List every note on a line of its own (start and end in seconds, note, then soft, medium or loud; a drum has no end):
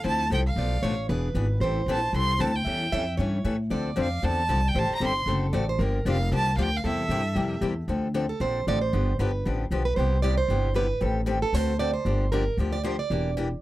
0.00 0.23 F3 medium
0.00 0.58 A4 medium
0.04 0.30 D2 medium
0.04 0.23 C4 medium
0.04 0.23 E4 medium
0.04 0.23 A4 medium
0.04 0.30 A5 loud
0.30 0.55 C2 medium
0.30 0.42 F3 medium
0.30 0.42 C4 medium
0.30 0.42 E4 medium
0.30 0.42 A4 loud
0.30 0.40 G5 medium
0.48 0.96 F5 medium
0.56 0.82 B1 medium
0.56 0.76 B2 medium
0.56 0.76 F3 medium
0.56 0.76 A3 medium
0.56 0.76 D4 medium
0.56 0.76 A4 medium
0.56 0.82 D5 medium
0.82 1.08 A1 medium
0.82 0.94 B2 medium
0.82 0.94 F3 medium
0.82 0.94 A3 medium
0.82 0.94 D4 medium
0.82 0.94 A4 loud
0.82 1.09 C#5 medium
1.09 1.34 E1 medium
1.09 1.28 E3 medium
1.09 1.28 B3 medium
1.09 1.28 D4 medium
1.09 1.28 G#4 medium
1.09 1.61 B4 loud
1.34 1.60 G#1 medium
1.34 1.46 E3 medium
1.34 1.46 B3 medium
1.34 1.46 D4 medium
1.34 1.46 G#4 medium
1.60 1.85 A1 medium
1.60 1.80 E3 medium
1.60 1.80 G3 medium
1.60 1.81 C4 medium
1.60 1.81 E4 medium
1.60 1.81 A4 medium
1.60 2.64 C5 medium
1.86 2.12 A#1 medium
1.86 1.98 E3 medium
1.86 1.99 G3 medium
1.86 1.99 C4 loud
1.86 1.99 E4 loud
1.86 1.99 A4 loud
1.92 2.14 A5 medium
2.13 2.38 C2 medium
2.13 2.32 E3 medium
2.13 2.33 G3 medium
2.13 2.33 C4 medium
2.13 2.33 E4 medium
2.13 2.33 A4 medium
2.17 2.42 C6 loud
2.39 2.65 D2 medium
2.39 2.50 E3 medium
2.39 2.51 G3 medium
2.39 2.51 C4 medium
2.39 2.51 E4 medium
2.39 2.51 A4 medium
2.39 2.57 A5 medium
2.55 3.07 G5 medium
2.65 2.91 E2 medium
2.65 2.84 E3 medium
2.65 2.85 G3 medium
2.65 2.85 C#4 medium
2.65 2.85 E4 medium
2.65 2.85 A4 medium
2.65 2.91 E5 medium
2.92 3.18 F2 medium
2.92 3.03 E3 medium
2.92 3.03 G3 medium
2.92 3.03 C#4 medium
2.92 3.03 E4 medium
2.92 3.03 A4 loud
2.92 3.17 E5 loud
3.17 3.44 G2 medium
3.17 3.37 E3 medium
3.17 3.37 G3 medium
3.17 3.38 C#4 medium
3.17 3.38 E4 medium
3.17 3.37 A4 medium
3.17 3.56 C#5 loud
3.44 3.70 A2 medium
3.44 3.55 E3 medium
3.44 3.55 G3 medium
3.44 3.55 C#4 medium
3.44 3.55 E4 medium
3.44 3.55 A4 medium
3.70 3.96 D2 medium
3.70 3.89 D3 medium
3.70 3.89 F3 medium
3.70 3.89 C4 medium
3.70 3.89 D4 medium
3.70 3.90 A4 medium
3.70 4.75 D5 medium
3.96 4.22 F2 medium
3.96 4.07 D3 medium
3.96 4.07 F3 medium
3.96 4.07 C4 medium
3.96 4.07 D4 medium
3.96 4.07 A4 medium
4.00 4.27 F5 medium
4.22 4.48 E2 medium
4.22 4.41 D3 medium
4.22 4.41 F3 medium
4.22 4.41 C4 medium
4.22 4.42 D4 medium
4.22 4.42 A4 medium
4.22 4.70 A5 loud
4.49 4.74 C2 medium
4.49 4.59 D3 medium
4.49 4.60 F3 medium
4.49 4.59 C4 medium
4.49 4.60 D4 loud
4.49 4.60 A4 medium
4.68 4.80 G5 medium
4.74 4.89 A1 medium
4.74 4.93 D#3 medium
4.74 4.93 G3 medium
4.74 4.93 C4 medium
4.74 4.94 G4 medium
4.74 4.94 A4 medium
4.74 5.24 C5 medium
4.79 4.92 A5 loud
4.91 muted upright bass stroke soft
4.95 5.03 A#5 medium
5.00 5.25 G1 medium
5.00 5.12 D#3 medium
5.00 5.11 G3 loud
5.00 5.11 C4 medium
5.00 5.12 G4 medium
5.00 5.12 A4 loud
5.07 5.29 C6 medium
5.26 5.52 F#1 medium
5.26 5.46 D3 medium
5.26 5.46 A3 medium
5.26 5.46 C4 medium
5.26 5.46 F#4 medium
5.26 5.52 A4 medium
5.26 5.46 A4 medium
5.53 5.78 A1 medium
5.53 5.63 D3 medium
5.53 5.64 A3 medium
5.53 5.64 C4 medium
5.53 5.64 F#4 medium
5.53 5.64 A4 medium
5.53 5.69 D5 medium
5.69 5.80 C5 medium
5.79 6.04 G1 loud
5.79 5.98 D3 medium
5.79 5.98 F3 medium
5.79 5.98 A#3 medium
5.79 5.99 D4 medium
5.79 5.99 G4 medium
5.79 6.84 A#4 medium
6.05 6.31 F1 medium
6.05 6.16 D3 medium
6.05 6.16 F3 loud
6.05 6.17 A#3 loud
6.05 6.16 D4 loud
6.05 6.17 G4 loud
6.10 6.32 F5 medium
6.31 6.57 C2 medium
6.31 6.50 D3 medium
6.31 6.50 F3 medium
6.31 6.50 A#3 medium
6.31 6.51 D4 medium
6.31 6.51 G4 medium
6.31 6.55 A5 loud
6.57 6.83 D2 medium
6.57 6.68 D3 medium
6.57 6.68 F3 loud
6.57 6.69 A#3 medium
6.57 6.68 D4 loud
6.57 6.68 G4 medium
6.57 6.64 F5 medium
6.63 6.78 G5 loud
6.77 6.86 F5 medium
6.84 7.08 E2 medium
6.84 7.03 C3 medium
6.84 7.03 G3 medium
6.84 7.03 A#3 medium
6.84 7.03 E4 medium
6.84 7.03 G4 medium
6.84 7.34 A4 medium
6.84 7.60 E5 medium
7.09 7.35 G2 medium
7.09 7.20 C3 medium
7.09 7.21 G3 medium
7.09 7.21 A#3 loud
7.09 7.21 E4 medium
7.09 7.21 G4 loud
7.35 7.61 F2 medium
7.35 7.54 C3 medium
7.35 7.55 G3 medium
7.35 7.55 A#3 medium
7.35 7.55 E4 medium
7.35 7.74 G4 medium
7.35 7.55 G4 medium
7.61 7.87 E2 medium
7.61 7.72 C3 medium
7.61 7.72 G3 medium
7.61 7.73 A#3 loud
7.61 7.73 E4 medium
7.61 7.73 G4 medium
7.88 8.30 D2 medium
7.88 8.07 D3 medium
7.88 8.07 F3 medium
7.88 8.07 C4 medium
7.88 8.07 D4 medium
7.88 8.07 A4 medium
8.14 8.25 D3 medium
8.14 8.25 F3 medium
8.14 8.25 C4 medium
8.14 8.25 D4 medium
8.14 8.25 A4 loud
8.29 8.40 A4 medium
8.40 8.63 A#1 medium
8.40 8.59 D3 medium
8.40 8.59 F3 medium
8.40 8.59 C4 medium
8.40 8.59 D4 medium
8.40 8.59 A4 medium
8.40 8.65 C5 medium
8.67 8.89 A1 medium
8.67 8.78 D3 medium
8.67 8.78 F3 medium
8.67 8.78 C4 medium
8.67 8.78 D4 loud
8.67 8.78 A4 medium
8.67 8.81 D5 medium
8.81 9.16 C5 medium
8.93 9.14 G1 loud
8.93 9.11 D3 medium
8.93 9.12 F3 medium
8.93 9.11 B3 medium
8.93 9.12 D4 medium
8.93 9.12 G4 medium
9.19 9.41 G1 medium
9.19 9.30 D3 medium
9.19 9.30 F3 medium
9.19 9.30 B3 loud
9.19 9.30 D4 medium
9.19 9.30 G4 loud
9.19 9.44 B4 medium
9.45 9.68 A1 medium
9.45 9.64 D3 medium
9.45 9.64 F3 medium
9.45 9.64 B3 medium
9.45 9.64 D4 medium
9.45 9.64 G4 medium
9.71 9.93 B1 medium
9.71 9.82 D3 medium
9.71 9.82 F3 medium
9.71 9.82 B3 medium
9.71 9.82 D4 medium
9.71 9.82 G4 loud
9.85 9.96 B4 medium
9.96 10.39 C2 medium
9.96 10.16 C3 medium
9.96 10.16 G3 medium
9.96 10.16 B3 medium
9.96 10.16 E4 medium
9.96 10.17 G4 medium
9.96 10.21 C5 medium
10.22 10.34 C3 medium
10.22 10.34 G3 medium
10.22 10.34 B3 medium
10.22 10.34 E4 loud
10.22 10.34 G4 loud
10.22 10.37 D5 medium
10.37 10.73 C5 medium
10.48 10.91 G1 medium
10.48 10.68 C3 medium
10.48 10.68 G3 medium
10.48 10.68 B3 medium
10.48 10.69 E4 medium
10.48 10.69 G4 medium
10.74 10.85 C3 medium
10.74 10.86 G3 medium
10.74 10.86 B3 loud
10.74 10.86 E4 loud
10.74 10.86 G4 loud
10.74 11.00 B4 medium
11.01 11.43 A1 loud
11.01 11.20 D#3 medium
11.01 11.20 G3 medium
11.01 11.20 C4 medium
11.01 11.20 G4 medium
11.01 11.20 A4 medium
11.26 11.37 D#3 medium
11.26 11.38 G3 loud
11.26 11.38 C4 medium
11.26 11.38 G4 loud
11.26 11.38 A4 loud
11.42 11.55 A4 medium
11.53 11.95 D2 medium
11.53 11.72 D3 medium
11.53 11.72 A3 medium
11.53 11.73 C4 medium
11.53 11.73 F#4 medium
11.53 11.73 A4 medium
11.53 11.79 C5 medium
11.79 11.90 D3 medium
11.79 11.90 A3 medium
11.79 11.90 C4 medium
11.79 11.91 F#4 medium
11.79 11.91 A4 medium
11.79 11.93 D5 medium
11.94 12.29 C5 medium
12.05 12.47 G1 medium
12.05 12.24 D3 medium
12.05 12.24 F3 medium
12.05 12.24 A#3 medium
12.05 12.25 D4 medium
12.05 12.25 G4 medium
12.32 12.43 D3 medium
12.32 12.43 F3 medium
12.32 12.43 A#3 medium
12.32 12.43 D4 loud
12.32 12.43 G4 medium
12.32 12.56 A#4 medium
12.57 13.00 D2 medium
12.57 12.77 D3 medium
12.57 12.77 F3 medium
12.57 12.77 A#3 medium
12.57 12.78 D4 medium
12.57 12.78 G4 medium
12.73 12.84 D5 loud
12.83 12.94 D3 medium
12.83 12.95 F3 loud
12.83 12.95 A#3 medium
12.83 12.95 D4 loud
12.83 12.95 G4 loud
12.83 12.99 C5 medium
12.99 13.34 D5 medium
13.10 13.52 E1 medium
13.10 13.29 E3 medium
13.10 13.29 A#3 medium
13.10 13.30 D4 medium
13.10 13.30 G4 medium
13.37 13.47 E3 loud
13.37 13.47 A#3 loud
13.37 13.48 D4 medium
13.37 13.48 G4 loud